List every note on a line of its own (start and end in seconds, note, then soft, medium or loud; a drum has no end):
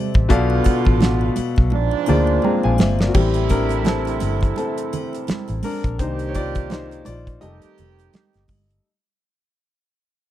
0.00 0.31 C3 medium
0.00 0.32 C4 medium
0.00 0.30 A4 medium
0.00 0.30 D5 medium
0.00 0.31 D#5 medium
0.00 0.32 E5 loud
0.14 0.27 A1 medium
0.14 kick loud
0.14 muted triangle medium
0.29 0.60 B1 loud
0.29 1.32 B2 loud
0.29 1.34 D3 medium
0.29 1.32 B3 loud
0.29 1.34 B3 medium
0.29 1.34 F4 medium
0.29 1.33 A4 medium
0.29 1.33 D5 loud
0.29 1.33 F5 loud
0.29 kick loud
0.29 closed hi-hat loud
0.29 muted conga soft
0.29 muted triangle medium
0.50 muted triangle medium
0.64 kick medium
0.64 closed hi-hat medium
0.64 muted conga medium
0.64 triangle medium
0.85 1.29 A1 medium
0.85 kick medium
0.85 muted triangle medium
1.00 snare loud
1.00 closed hi-hat medium
1.00 high conga medium
1.00 muted triangle medium
1.21 muted triangle medium
1.36 muted fingered electric bass stroke soft
1.36 closed hi-hat medium
1.36 muted conga medium
1.36 triangle medium
1.56 1.73 B1 medium
1.56 kick medium
1.56 muted triangle soft
1.70 1.90 A#1 medium
1.70 2.77 G#2 medium
1.70 2.77 F3 medium
1.70 2.77 D4 medium
1.70 muted conga medium
1.70 muted triangle soft
1.91 muted triangle medium
2.06 2.38 D2 medium
2.06 2.85 A#3 medium
2.06 2.85 F4 medium
2.06 2.42 G#4 medium
2.06 2.44 C5 medium
2.06 2.44 D5 medium
2.06 low conga medium
2.06 triangle medium
2.27 muted triangle medium
2.42 3.06 C4 medium
2.42 3.10 G#4 medium
2.42 2.64 G5 medium
2.42 2.64 A#5 medium
2.42 high conga medium
2.42 muted triangle medium
2.63 2.77 A#1 medium
2.63 2.79 F5 medium
2.63 2.78 G#5 medium
2.63 high conga soft
2.63 muted triangle medium
2.78 3.09 G1 medium
2.78 2.99 C5 medium
2.78 2.99 E5 medium
2.78 snare loud
2.78 high conga medium
2.78 triangle medium
2.99 3.34 A#4 soft
2.99 3.33 D5 medium
2.99 snare medium
2.99 muted triangle medium
3.07 3.14 F#4 medium
3.14 4.18 A1 loud
3.14 5.60 C3 medium
3.14 4.17 E3 soft
3.14 4.17 G3 soft
3.14 5.60 A3 medium
3.14 3.48 C4 medium
3.14 5.60 E4 medium
3.14 3.51 G4 medium
3.14 kick loud
3.14 crash medium
3.14 muted conga soft
3.14 muted triangle medium
3.34 closed hi-hat medium
3.34 muted triangle medium
3.49 3.84 D4 medium
3.49 3.87 A#4 medium
3.49 kick medium
3.49 closed hi-hat medium
3.49 muted conga soft
3.49 triangle medium
3.69 closed hi-hat soft
3.69 muted triangle soft
3.85 4.54 C4 medium
3.85 4.56 A4 medium
3.85 snare loud
3.85 closed hi-hat medium
3.85 high conga medium
3.85 muted triangle medium
4.05 closed hi-hat medium
4.05 muted triangle medium
4.20 4.51 G1 medium
4.20 closed hi-hat medium
4.20 muted conga medium
4.20 triangle medium
4.41 kick medium
4.41 closed hi-hat soft
4.41 muted triangle medium
4.56 5.60 C4 medium
4.56 5.67 A4 medium
4.56 closed hi-hat medium
4.56 muted conga soft
4.56 muted triangle soft
4.77 closed hi-hat medium
4.77 muted triangle medium
4.93 closed hi-hat medium
4.93 low conga medium
4.93 triangle medium
5.13 closed hi-hat medium
5.13 muted triangle medium
5.27 muted fingered electric bass stroke soft
5.27 snare loud
5.27 closed hi-hat medium
5.27 high conga medium
5.27 muted triangle soft
5.48 5.62 A1 medium
5.48 closed hi-hat medium
5.48 muted triangle medium
5.63 5.98 D4 medium
5.63 5.97 A#4 medium
5.63 open hi-hat medium
5.63 high conga medium
5.63 triangle medium
5.84 6.00 A#1 medium
5.84 kick medium
5.84 closed hi-hat medium
5.84 muted triangle medium
5.99 7.02 C2 loud
5.99 7.04 D#3 medium
5.99 7.38 D#3 medium
5.99 7.38 A#3 soft
5.99 7.04 C4 medium
5.99 7.39 D4 medium
5.99 6.28 D#4 medium
5.99 7.04 G4 medium
5.99 6.30 C5 medium
5.99 kick loud
5.99 closed hi-hat loud
5.99 muted triangle medium
6.19 closed hi-hat medium
6.19 muted triangle medium
6.29 6.35 C#5 medium
6.35 6.69 F4 medium
6.35 6.69 D5 loud
6.35 kick medium
6.35 closed hi-hat medium
6.35 muted conga soft
6.35 triangle medium
6.55 kick medium
6.55 closed hi-hat medium
6.55 muted triangle soft
6.70 7.04 D#4 medium
6.70 7.04 C5 medium
6.70 snare loud
6.70 closed hi-hat medium
6.70 high conga medium
6.70 muted triangle soft
6.91 closed hi-hat soft
6.91 muted triangle soft
7.05 7.36 A#1 medium
7.05 7.15 F4 medium
7.05 7.14 D5 medium
7.05 closed hi-hat medium
7.05 muted conga medium
7.05 triangle medium
7.27 kick medium
7.27 closed hi-hat soft
7.27 muted triangle soft
7.41 7.60 F1 medium
7.41 8.47 D#3 medium
7.41 8.45 G3 medium
7.41 8.45 A3 soft
7.41 8.47 C4 medium
7.41 8.45 D#4 medium
7.41 8.47 G4 medium
7.41 8.10 A4 medium
7.41 8.09 D#5 loud
7.41 closed hi-hat medium
7.41 muted conga soft
7.41 muted triangle soft
7.62 muted fingered electric bass stroke soft
7.62 closed hi-hat medium
7.62 muted triangle medium
7.78 8.08 F1 medium
7.78 closed hi-hat medium
7.78 low conga medium
7.78 triangle medium
7.99 closed hi-hat medium
7.99 muted triangle medium
8.13 snare loud
8.13 closed hi-hat medium
8.13 high conga medium
8.13 muted triangle soft
8.33 8.47 G1 medium
8.33 snare soft
8.33 closed hi-hat soft
8.33 muted triangle soft
8.48 8.79 G1 medium
8.48 kick medium
8.48 open hi-hat medium
8.48 high conga medium
8.48 triangle medium
8.71 closed hi-hat medium
8.71 muted triangle soft